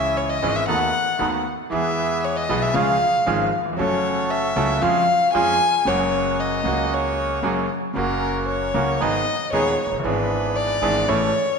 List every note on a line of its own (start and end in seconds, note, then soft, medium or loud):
0.00 0.38 C#2 medium
0.00 0.38 C#3 medium
0.00 0.37 E3 medium
0.00 0.38 G#3 medium
0.00 0.38 C#4 medium
0.00 0.38 E4 medium
0.00 0.38 G#4 medium
0.00 0.39 G#4 medium
0.00 0.19 E5 medium
0.17 0.31 C#5 medium
0.30 0.58 D#5 medium
0.42 0.64 G#1 medium
0.42 0.64 G#2 medium
0.42 0.64 E3 medium
0.42 0.64 G#3 medium
0.42 0.64 C#4 medium
0.42 0.64 E4 medium
0.42 0.64 G#4 medium
0.56 0.68 E5 loud
0.68 0.90 D#2 medium
0.68 0.91 D#3 medium
0.68 0.90 A3 medium
0.68 0.90 B3 medium
0.68 0.91 B3 medium
0.68 0.90 D#4 medium
0.68 0.91 F#4 medium
0.68 0.90 A4 medium
0.68 1.43 F#5 medium
1.19 1.42 D#2 medium
1.19 1.42 D#3 medium
1.19 1.42 A3 medium
1.19 1.42 B3 medium
1.19 1.42 D#4 medium
1.19 1.42 F#4 medium
1.19 1.42 A4 medium
1.70 2.46 E2 medium
1.70 2.46 E3 medium
1.70 2.46 G#3 medium
1.70 2.46 B3 medium
1.70 2.46 E4 medium
1.70 2.46 G#4 medium
1.70 2.26 E5 medium
1.74 2.47 G#4 medium
2.25 2.39 C#5 medium
2.37 2.64 D#5 medium
2.49 2.71 B1 medium
2.49 2.72 B1 medium
2.49 2.71 B2 medium
2.49 2.71 E3 medium
2.49 2.71 G#3 medium
2.49 2.71 B3 medium
2.49 2.72 B3 medium
2.49 2.72 E4 medium
2.49 2.71 G#4 medium
2.49 2.72 G#4 medium
2.63 2.76 E5 medium
2.74 2.97 C#2 medium
2.74 2.97 C#3 medium
2.74 2.97 F3 medium
2.74 2.97 G#3 medium
2.74 2.97 C#4 medium
2.74 2.97 F4 medium
2.74 2.97 G#4 medium
2.74 3.53 F5 loud
3.26 3.49 G#1 medium
3.26 3.49 G#2 medium
3.26 3.49 F3 medium
3.26 3.49 G#3 medium
3.26 3.49 C#4 medium
3.26 3.49 F4 medium
3.26 3.49 G#4 medium
3.59 3.66 D#2 soft
3.65 3.73 E2 medium
3.73 3.79 F2 medium
3.77 4.53 F#1 loud
3.77 4.53 F#2 medium
3.77 3.79 F#3 medium
3.77 4.53 F#3 medium
3.77 4.53 A3 medium
3.77 4.52 C#4 medium
3.77 4.54 C#4 medium
3.77 4.53 F#4 medium
3.77 4.53 A4 medium
3.77 4.32 C#5 medium
3.81 4.54 A4 medium
4.31 4.84 E5 medium
4.56 4.78 C#2 medium
4.56 4.79 C#2 medium
4.56 4.79 C#3 medium
4.56 4.79 F#3 medium
4.56 4.79 A3 medium
4.56 4.78 C#4 medium
4.56 4.79 C#4 medium
4.56 4.78 F#4 medium
4.56 4.79 A4 medium
4.82 5.04 F2 medium
4.82 5.05 F2 medium
4.82 5.04 F3 medium
4.82 5.04 G#3 medium
4.82 5.04 C#4 medium
4.82 5.04 F4 medium
4.82 5.04 G#4 medium
4.82 5.05 G#4 medium
4.82 5.33 F5 loud
5.33 5.57 F2 medium
5.33 5.57 F3 medium
5.33 5.57 G#3 medium
5.33 5.56 C#4 medium
5.33 5.57 C#4 medium
5.33 5.56 F4 medium
5.33 5.56 G#4 medium
5.33 5.57 G#4 medium
5.33 5.89 G#5 loud
5.85 6.61 F#1 medium
5.85 6.61 F#2 medium
5.85 6.60 C#3 medium
5.85 6.61 F#3 medium
5.85 6.61 G#3 medium
5.85 6.61 A#3 medium
5.85 6.62 A#3 medium
5.85 6.61 F#4 medium
5.85 6.62 F#4 medium
5.85 6.61 G#4 medium
5.85 6.41 C#5 medium
6.40 6.95 D#5 medium
6.64 7.40 C#2 medium
6.64 7.40 C#3 medium
6.64 7.40 G#3 medium
6.64 7.39 A#3 medium
6.64 7.40 A#3 medium
6.64 7.40 F#4 medium
6.64 7.41 F#4 medium
6.64 7.39 G#4 medium
6.94 7.71 C#5 medium
7.43 7.65 F#1 medium
7.43 7.65 F#2 medium
7.43 7.65 C#3 medium
7.43 7.66 F#3 medium
7.43 7.66 G#3 medium
7.43 7.66 A#3 medium
7.43 7.66 F#4 medium
7.43 7.66 G#4 medium
7.94 8.71 F#1 medium
7.94 8.70 F#2 medium
7.94 8.69 C#3 medium
7.94 8.70 F#3 medium
7.94 8.70 A#3 medium
7.94 8.71 A#3 medium
7.94 8.70 C#4 medium
7.94 8.71 F#4 medium
7.94 8.45 A#4 medium
7.98 8.71 F#4 medium
8.49 9.03 C#5 medium
8.74 8.96 C#2 medium
8.74 8.96 C#3 medium
8.74 8.96 F#3 medium
8.74 8.96 A#3 medium
8.74 8.97 C#4 medium
8.74 8.96 F#4 medium
8.74 8.97 F#4 medium
9.00 9.23 G#1 medium
9.00 9.23 G#2 medium
9.00 9.22 D#3 medium
9.00 9.23 G#3 medium
9.00 9.22 B3 medium
9.00 9.23 B3 medium
9.00 9.22 D#4 medium
9.00 9.22 G#4 medium
9.00 9.23 G#4 medium
9.00 9.52 D#5 medium
9.52 9.75 D#1 medium
9.52 9.74 D#2 medium
9.52 9.75 D#2 medium
9.52 9.74 D#3 medium
9.52 9.75 G#3 medium
9.52 9.74 B3 medium
9.52 9.75 B3 medium
9.52 9.75 D#4 medium
9.52 9.75 G#4 medium
9.52 9.89 C#5 medium
9.86 9.92 F1 medium
9.86 9.91 F1 soft
9.92 9.98 F#1 medium
9.99 10.05 G1 medium
9.99 10.04 G1 medium
9.99 10.77 E3 medium
10.04 10.78 G#1 medium
10.04 10.79 G#1 medium
10.04 10.78 G#2 medium
10.04 10.78 B3 medium
10.04 10.78 D4 medium
10.04 10.79 D4 medium
10.04 10.78 E4 medium
10.04 10.78 G#4 medium
10.04 10.80 G#4 medium
10.04 10.58 B4 medium
10.57 11.10 D5 medium
10.81 11.04 G#1 medium
10.81 11.04 G#2 medium
10.81 11.04 E3 medium
10.81 11.04 B3 medium
10.81 11.03 D4 medium
10.81 11.04 D4 medium
10.81 11.04 E4 medium
10.81 11.04 G#4 medium
11.08 11.30 A1 medium
11.08 11.30 A2 medium
11.08 11.30 E3 medium
11.08 11.30 A3 medium
11.08 11.30 C#4 medium
11.08 11.30 E4 medium
11.08 11.30 A4 loud
11.08 11.30 A4 medium
11.08 11.59 C#5 loud